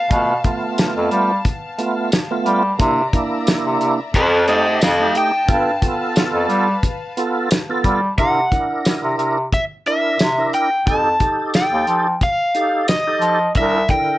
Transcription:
Already playing: B3 F5 A5
0.10 B2 A3 B3 F4, kick, closed hi-hat
0.44 A3 B3 F4, kick, closed hi-hat
0.78 snare, closed hi-hat, tambourine
0.96 F2
1.11 G3, closed hi-hat
1.45 kick, closed hi-hat
1.78 A3 B3 F4, closed hi-hat
2.12 snare, closed hi-hat, tambourine
2.31 A3 B3 F4
2.46 G3, closed hi-hat
2.79 C3 A#3 D4 E4 D5 E5 A#5, kick, closed hi-hat
3.13 A#3 D4 E4, kick, closed hi-hat
3.47 snare, closed hi-hat, tambourine
3.65 C3
3.79 C3, closed hi-hat
4.14 F2 A4 C5 D#5 G5 A5, kick, closed hi-hat
4.48 A3 D#4 G4 C5 D#5, closed hi-hat
4.81 F2 A4 F5, snare, closed hi-hat, tambourine
4.99 A3 D#4 G4
5.15 G5, closed hi-hat
5.48 G2 B3 F4 A4 B4 F5, kick, closed hi-hat
5.81 B3 F4 A4, kick, closed hi-hat
6.16 snare, closed hi-hat, tambourine
6.34 F2
6.49 G3, closed hi-hat
6.83 kick, closed hi-hat
7.17 B3 F4 A4, closed hi-hat
7.51 snare, closed hi-hat, tambourine
7.69 B3 F4 A4
7.84 G3, kick, closed hi-hat
8.18 C3 D4 E4 A#4 F#5, kick, closed hi-hat
8.51 D4 E4 A#4, kick, closed hi-hat
8.85 snare, closed hi-hat, tambourine
9.03 C3
9.12 E5
9.18 C3, closed hi-hat
9.52 E5, kick, closed hi-hat
9.86 D4 E4 A#4 E5, closed hi-hat
10.19 C3, snare, closed hi-hat, tambourine
10.38 D4 E4 A#4
10.53 G5, closed hi-hat
10.86 F2 D#4 G4 A4 A5, kick, closed hi-hat
11.20 D#4 G4 A4, kick, closed hi-hat
11.54 G5, snare, closed hi-hat, tambourine
11.72 D#2
11.87 F3, closed hi-hat
12.21 F5, kick, closed hi-hat
12.55 D#4 G4 A4, closed hi-hat
12.88 D#5, snare, closed hi-hat, tambourine
13.07 D#4 G4 A4
13.21 F3, closed hi-hat
13.55 C2 D4 E4 A#4 E5, kick, closed hi-hat
13.89 D3 E4 A#4 G5, kick, closed hi-hat

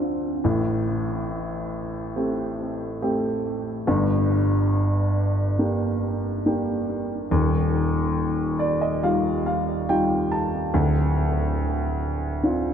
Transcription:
Already playing: D2 D3 C4 D4 F4
0.44 A1 A2
2.16 A3 C4 G4
3.02 A3 C4 G4
3.87 G1 G2
5.59 A#3 D4 G4
6.46 A#3 D4 G4
7.31 D#1 D#2
8.59 D5
8.81 D#5
9.03 G3 D#4 F4 F5
9.46 F5
9.89 G3 D#4 F4 G5
10.32 A5
10.74 D1 D2
12.43 C4 D4 F4

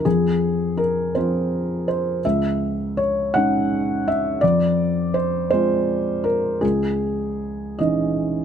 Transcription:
0.05 F2 G#4
0.77 A#4
1.15 F3 C4 F4 C5
1.88 C5
2.25 C#2 E5
2.97 C#5
3.34 G#3 C#4 D#4 F#5
4.08 E5
4.41 F2 D5
5.14 C5
5.50 G#3 C4 F4 C5
6.24 A#4
6.61 C#2 G#4
7.79 E3 C#4 D#4 D#5

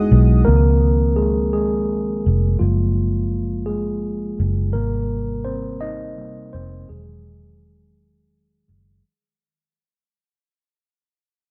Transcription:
Already playing: G#3 B3 D#4 E4 F#4 G#4 D#5 F#5 D#6
0.11 B1
0.45 C#2 D#3 F3 A#3 C4 A#4
1.16 G#3 G#4
1.53 G#3 G#4
2.26 F1
2.59 F#1 F3 G#3 A#3 F4
3.66 G#3 G#4
4.40 F#1
4.73 G#1 C3 G3 A#3 A#4
5.45 C4 C5
5.81 D#4 D#5
6.17 C3 G3 A#3
6.53 F1 C4 C5
6.89 E1 D#3 F#3 G#3 G#4
8.68 F#1 D#3 F#3 G#3

